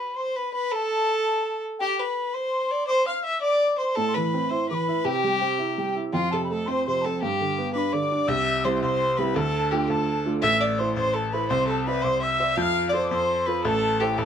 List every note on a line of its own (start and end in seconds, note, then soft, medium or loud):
0.00 0.15 B4 medium
0.00 0.18 B5 medium
0.16 0.37 C5 medium
0.16 0.38 C6 medium
0.36 0.53 B4 medium
0.36 0.52 B5 medium
0.53 0.73 B4 medium
0.53 0.71 B5 medium
0.71 1.62 A4 loud
0.71 0.77 B5 medium
0.76 1.62 A5 medium
1.79 2.01 G4 loud
1.79 1.98 G5 medium
1.99 2.35 B4 medium
1.99 2.35 B5 medium
2.33 2.73 C5 medium
2.33 2.87 C6 medium
2.71 2.87 D5 medium
2.87 3.06 C5 loud
2.87 3.08 C6 medium
2.87 2.92 D6 medium
3.07 3.24 F5 medium
3.07 3.25 F6 medium
3.23 3.41 E5 medium
3.23 3.41 E6 medium
3.41 3.76 D5 loud
3.41 3.80 D6 medium
3.78 3.97 C5 medium
3.78 3.97 C6 medium
3.95 5.02 A2 medium
3.95 4.16 A4 loud
3.95 4.08 A5 medium
4.08 4.17 C6 medium
4.14 4.33 E3 medium
4.14 4.51 B4 medium
4.14 4.53 B5 medium
4.34 4.50 C4 medium
4.49 4.69 E4 medium
4.49 4.68 C5 medium
4.49 4.70 C6 medium
4.69 4.87 E3 soft
4.69 5.06 B4 medium
4.69 4.75 D6 medium
4.74 5.07 B5 medium
4.88 5.05 E4 medium
5.04 6.09 C3 medium
5.04 5.95 G4 loud
5.04 5.50 G5 medium
5.24 5.41 G3 medium
5.41 5.58 C4 medium
5.59 5.77 E4 medium
5.78 5.95 G3 soft
5.78 5.94 G5 medium
5.96 6.12 E4 medium
6.12 7.17 F2 medium
6.12 6.34 F4 loud
6.12 6.18 G5 medium
6.17 6.33 F5 medium
6.31 6.49 C3 medium
6.31 6.49 A4 medium
6.31 6.44 A5 medium
6.44 6.48 B5 medium
6.44 6.54 B5 medium
6.50 6.66 A3 soft
6.50 6.69 A4 medium
6.50 6.68 A5 medium
6.66 6.86 C4 medium
6.66 6.86 C5 medium
6.66 6.85 C6 medium
6.85 7.03 C3 medium
6.85 7.06 C5 medium
6.85 7.03 C6 medium
7.02 7.21 C4 medium
7.02 7.21 A4 medium
7.02 7.19 A5 medium
7.19 8.26 G2 medium
7.19 7.71 G4 medium
7.19 7.73 G5 medium
7.19 7.24 A5 medium
7.41 7.57 D3 soft
7.58 7.74 B3 medium
7.74 7.93 D4 medium
7.74 7.94 B4 medium
7.74 7.79 D6 medium
7.78 7.94 B5 medium
7.93 8.10 D3 medium
7.93 8.30 D5 medium
7.93 8.29 D6 medium
8.12 8.28 D4 medium
8.28 8.79 C2 loud
8.28 9.33 C3 medium
8.28 8.66 E5 loud
8.28 8.66 E6 medium
8.64 9.00 G3 soft
8.64 9.00 C4 soft
8.64 9.00 E4 medium
8.64 8.81 C5 medium
8.64 8.82 C6 medium
8.81 9.33 C2 medium
8.81 9.19 C5 loud
8.81 9.20 C6 medium
9.17 9.35 G3 soft
9.17 9.35 C4 soft
9.17 9.35 E4 medium
9.17 9.36 B4 medium
9.17 9.36 B5 medium
9.34 9.86 D2 loud
9.34 10.40 D3 medium
9.34 9.72 A4 loud
9.34 9.41 B5 medium
9.40 9.74 A5 medium
9.71 10.07 A3 medium
9.71 10.08 D4 soft
9.71 10.08 F4 medium
9.71 9.89 G4 medium
9.71 9.89 G5 medium
9.87 10.40 D2 medium
9.87 10.29 A4 medium
9.87 10.19 A5 medium
10.25 10.42 A3 medium
10.25 10.42 D4 soft
10.25 10.43 F4 soft
10.42 10.93 A1 loud
10.42 11.47 A3 medium
10.42 10.62 E5 loud
10.42 10.81 E6 loud
10.60 10.79 D5 medium
10.78 11.15 E4 medium
10.78 11.15 A4 soft
10.78 10.94 C5 medium
10.78 11.15 C5 medium
10.78 10.96 C6 medium
10.94 11.47 A1 medium
10.94 11.15 C5 medium
10.94 11.17 C6 medium
11.14 11.30 A4 medium
11.14 11.35 A5 medium
11.31 11.50 E4 soft
11.31 11.50 A4 medium
11.31 11.47 B4 medium
11.31 11.50 C5 medium
11.31 11.52 B5 medium
11.48 12.01 C2 loud
11.48 12.54 C4 medium
11.48 11.67 C5 loud
11.48 11.72 C6 medium
11.67 11.84 A4 medium
11.67 11.89 A5 medium
11.85 12.03 B4 medium
11.85 12.22 C5 soft
11.85 12.22 D5 soft
11.85 12.23 E5 soft
11.85 12.06 B5 medium
12.01 12.54 C2 medium
12.01 12.20 C5 loud
12.01 12.10 D6 medium
12.09 12.25 C6 medium
12.21 12.58 E5 loud
12.21 12.57 E6 loud
12.40 12.57 C5 soft
12.40 12.57 D5 soft
12.40 12.57 E5 medium
12.56 13.08 F2 loud
12.56 13.61 F3 medium
12.56 12.88 F5 loud
12.56 12.63 G6 medium
12.62 12.91 F6 medium
12.89 13.08 C5 medium
12.89 12.94 D5 medium
12.93 13.29 F4 medium
12.93 13.29 A4 soft
12.93 13.29 C5 soft
12.93 13.03 C6 medium
13.03 13.10 D6 medium
13.09 13.61 F2 medium
13.09 13.47 C5 medium
13.09 13.16 D6 medium
13.15 13.48 C6 medium
13.46 13.64 F4 soft
13.46 13.64 A4 soft
13.46 13.63 B4 medium
13.46 13.64 C5 medium
13.46 13.64 B5 medium
13.64 14.15 A1 loud
13.64 14.25 A3 medium
13.64 14.01 A4 loud
13.64 13.69 B5 medium
13.68 14.00 A5 medium
14.00 14.25 E4 medium
14.00 14.19 G4 medium
14.00 14.25 A4 soft
14.00 14.25 C5 medium
14.00 14.20 G5 medium
14.18 14.25 A1 medium
14.18 14.25 A4 medium
14.18 14.23 B5 medium
14.22 14.25 A5 medium